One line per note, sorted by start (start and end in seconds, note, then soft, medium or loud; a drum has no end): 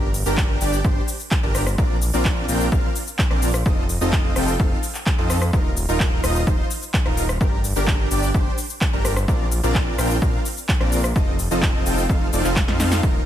0.00 0.24 G1 loud
0.14 open hi-hat loud
0.14 shaker medium
0.26 0.59 G1 loud
0.26 0.58 D4 medium
0.26 0.58 G4 medium
0.26 0.58 A#4 medium
0.26 shaker soft
0.37 kick loud
0.37 clap loud
0.37 shaker soft
0.61 0.82 G1 loud
0.61 0.79 D4 medium
0.61 0.78 G4 medium
0.61 0.79 D5 medium
0.61 open hi-hat loud
0.61 shaker medium
0.73 shaker soft
0.84 1.00 G1 loud
0.84 1.02 D4 loud
0.84 1.02 G4 medium
0.84 1.02 C5 loud
0.84 kick loud
0.84 shaker soft
1.08 open hi-hat loud
1.08 shaker medium
1.20 shaker soft
1.31 kick loud
1.31 clap loud
1.31 shaker soft
1.43 1.76 G1 loud
1.43 1.61 D4 medium
1.43 1.61 G4 medium
1.43 1.61 A#4 loud
1.55 cross-stick medium
1.55 open hi-hat loud
1.55 shaker medium
1.67 cross-stick medium
1.67 shaker soft
1.78 2.11 A#1 loud
1.78 1.96 C4 medium
1.78 1.96 D4 medium
1.78 1.96 F4 medium
1.78 1.96 A#4 medium
1.78 1.96 D5 medium
1.78 kick loud
1.78 shaker soft
2.02 open hi-hat loud
2.02 shaker medium
2.13 2.46 A#1 medium
2.13 2.46 C4 medium
2.13 2.46 D4 medium
2.13 2.46 F4 medium
2.13 2.46 A#4 medium
2.13 2.46 D5 medium
2.13 shaker soft
2.25 kick loud
2.25 clap loud
2.25 shaker soft
2.49 2.70 A#1 loud
2.49 2.66 C4 medium
2.49 2.66 D4 medium
2.49 2.66 F4 medium
2.49 2.66 A#4 medium
2.49 2.66 G5 medium
2.49 open hi-hat loud
2.49 shaker medium
2.61 shaker soft
2.72 2.87 A#1 loud
2.72 2.90 C4 loud
2.72 2.90 D4 medium
2.72 2.90 F4 medium
2.72 2.90 A#4 medium
2.72 2.90 F5 loud
2.72 kick loud
2.72 shaker soft
2.95 open hi-hat loud
2.95 shaker medium
3.07 shaker soft
3.19 kick loud
3.19 clap loud
3.19 shaker soft
3.31 3.63 A#1 loud
3.31 3.48 C4 medium
3.31 3.48 D4 medium
3.31 3.48 F4 medium
3.31 3.48 A#4 medium
3.31 3.48 D5 loud
3.31 cross-stick medium
3.42 open hi-hat loud
3.42 shaker medium
3.54 cross-stick medium
3.54 shaker soft
3.66 3.99 F1 loud
3.66 3.83 C4 medium
3.66 3.83 D#4 medium
3.66 3.83 F4 medium
3.66 3.83 A4 medium
3.66 3.83 D#5 medium
3.66 kick loud
3.66 shaker soft
3.89 open hi-hat loud
3.89 shaker medium
4.01 4.34 F1 loud
4.01 4.33 C4 medium
4.01 4.33 D#4 medium
4.01 4.33 F4 medium
4.01 4.33 A4 medium
4.01 4.33 D#5 medium
4.01 shaker soft
4.12 kick loud
4.12 clap loud
4.12 shaker soft
4.36 4.57 F1 loud
4.36 4.54 C4 medium
4.36 4.54 D#4 medium
4.36 4.54 F4 medium
4.36 4.54 A4 medium
4.36 4.54 G5 medium
4.36 cross-stick medium
4.36 open hi-hat loud
4.36 shaker medium
4.48 shaker soft
4.60 4.75 F1 loud
4.60 4.77 C4 loud
4.60 4.77 D#4 medium
4.60 4.77 F4 medium
4.60 4.77 A4 medium
4.60 4.77 F5 loud
4.60 kick loud
4.60 shaker soft
4.83 open hi-hat loud
4.83 shaker medium
4.95 clap soft
4.95 shaker soft
5.06 kick loud
5.06 clap loud
5.06 shaker soft
5.18 5.51 F2 loud
5.18 5.36 C4 medium
5.18 5.36 D#4 medium
5.18 5.36 F4 medium
5.18 5.36 A4 medium
5.18 5.36 D#5 medium
5.30 cross-stick medium
5.30 open hi-hat loud
5.30 shaker medium
5.42 cross-stick medium
5.42 shaker soft
5.53 5.86 D#1 loud
5.53 5.71 D#4 medium
5.53 5.71 F4 medium
5.53 5.71 A#4 medium
5.53 kick loud
5.53 shaker soft
5.77 open hi-hat loud
5.77 shaker medium
5.88 6.21 D#1 loud
5.88 6.21 D#4 medium
5.88 6.21 F4 medium
5.88 6.21 A#4 medium
5.88 shaker soft
6.00 kick loud
6.00 clap loud
6.00 shaker soft
6.24 6.45 D#1 loud
6.24 6.41 D#4 medium
6.24 6.41 F4 medium
6.24 6.41 D#5 medium
6.24 cross-stick medium
6.24 open hi-hat loud
6.24 shaker medium
6.36 shaker soft
6.47 6.62 D#1 loud
6.47 6.64 D#4 loud
6.47 6.64 F4 medium
6.47 6.64 C5 loud
6.47 kick loud
6.47 shaker soft
6.70 open hi-hat loud
6.70 shaker medium
6.82 shaker soft
6.94 kick loud
6.94 clap loud
6.94 shaker soft
7.06 7.38 D#1 loud
7.06 7.23 D#4 medium
7.06 7.23 F4 medium
7.06 7.23 A#4 loud
7.06 cross-stick medium
7.17 open hi-hat loud
7.17 shaker medium
7.29 cross-stick medium
7.29 shaker soft
7.41 7.74 G1 loud
7.41 7.58 D4 medium
7.41 7.58 G4 medium
7.41 7.58 A#4 medium
7.41 kick loud
7.41 shaker soft
7.64 open hi-hat loud
7.64 shaker medium
7.76 8.09 G1 loud
7.76 8.08 D4 medium
7.76 8.08 G4 medium
7.76 8.08 A#4 medium
7.76 shaker soft
7.88 kick loud
7.88 clap loud
7.88 shaker soft
8.11 8.32 G1 loud
8.11 8.29 D4 medium
8.11 8.29 G4 medium
8.11 8.29 D5 medium
8.11 open hi-hat loud
8.11 shaker medium
8.23 shaker soft
8.34 8.50 G1 loud
8.34 8.52 D4 loud
8.34 8.52 G4 medium
8.34 8.52 C5 loud
8.34 kick loud
8.34 shaker soft
8.58 open hi-hat loud
8.58 shaker medium
8.70 shaker soft
8.81 kick loud
8.81 clap loud
8.81 shaker soft
8.93 9.26 G1 loud
8.93 9.11 D4 medium
8.93 9.11 G4 medium
8.93 9.11 A#4 loud
9.05 cross-stick medium
9.05 open hi-hat loud
9.05 shaker medium
9.16 cross-stick medium
9.16 shaker soft
9.28 9.61 A#1 loud
9.28 9.46 C4 medium
9.28 9.46 D4 medium
9.28 9.46 F4 medium
9.28 9.46 A#4 medium
9.28 9.46 D5 medium
9.28 kick loud
9.28 shaker soft
9.52 open hi-hat loud
9.52 shaker medium
9.63 9.96 A#1 loud
9.63 9.96 C4 medium
9.63 9.96 D4 medium
9.63 9.96 F4 medium
9.63 9.96 A#4 medium
9.63 9.96 D5 medium
9.63 shaker soft
9.75 kick loud
9.75 clap loud
9.75 shaker soft
9.99 10.20 A#1 loud
9.99 10.16 C4 medium
9.99 10.16 D4 medium
9.99 10.16 F4 medium
9.99 10.16 A#4 medium
9.99 10.16 G5 medium
9.99 cross-stick medium
9.99 open hi-hat loud
9.99 shaker medium
10.10 shaker soft
10.22 10.37 A#1 loud
10.22 10.39 C4 loud
10.22 10.39 D4 medium
10.22 10.39 F4 medium
10.22 10.39 A#4 medium
10.22 10.40 F5 loud
10.22 kick loud
10.22 shaker soft
10.45 open hi-hat loud
10.45 shaker medium
10.57 shaker soft
10.69 kick loud
10.69 clap loud
10.69 shaker soft
10.80 11.13 A#1 loud
10.80 10.98 C4 medium
10.80 10.98 D4 medium
10.80 10.98 F4 medium
10.80 10.98 A#4 medium
10.80 10.98 D5 loud
10.80 cross-stick medium
10.92 open hi-hat loud
10.92 shaker medium
11.04 cross-stick medium
11.04 shaker soft
11.16 11.49 F1 loud
11.16 11.33 C4 medium
11.16 11.33 D#4 medium
11.16 11.33 F4 medium
11.16 11.33 A4 medium
11.16 11.33 D#5 medium
11.16 kick loud
11.16 shaker soft
11.39 open hi-hat loud
11.39 shaker medium
11.51 11.84 F1 loud
11.51 11.83 C4 medium
11.51 11.83 D#4 medium
11.51 11.83 F4 medium
11.51 11.83 A4 medium
11.51 11.83 D#5 medium
11.51 shaker soft
11.63 kick loud
11.63 clap loud
11.63 shaker soft
11.86 12.07 F1 loud
11.86 12.04 C4 medium
11.86 12.04 D#4 medium
11.86 12.04 F4 medium
11.86 12.04 A4 medium
11.86 12.04 G5 medium
11.86 open hi-hat loud
11.86 shaker medium
11.98 shaker soft
12.09 12.31 F1 loud
12.09 12.27 C4 loud
12.09 12.27 D#4 medium
12.09 12.27 F4 medium
12.09 12.27 A4 medium
12.09 12.27 F5 loud
12.09 kick loud
12.09 shaker soft
12.33 12.42 F1 loud
12.33 12.43 C4 medium
12.33 12.43 D#4 medium
12.33 12.43 F4 medium
12.33 12.43 A4 medium
12.33 12.43 D5 loud
12.33 open hi-hat loud
12.33 shaker medium
12.45 12.66 F1 loud
12.45 12.62 C4 medium
12.45 12.62 D#4 medium
12.45 12.62 F4 medium
12.45 12.62 A4 medium
12.45 12.62 F5 loud
12.45 clap soft
12.45 shaker soft
12.56 kick loud
12.56 snare medium
12.56 clap loud
12.56 shaker soft
12.68 13.01 F2 loud
12.68 13.00 C4 medium
12.68 13.00 D#4 medium
12.68 13.00 F4 medium
12.68 13.00 A4 medium
12.68 13.00 F5 medium
12.68 snare medium
12.80 snare medium
12.80 open hi-hat loud
12.80 shaker medium
12.92 snare medium
12.92 shaker soft
13.03 13.26 D#1 loud
13.03 13.21 D#4 medium
13.03 13.21 F4 medium
13.03 13.21 A#4 medium
13.03 kick loud
13.03 ride medium
13.03 shaker soft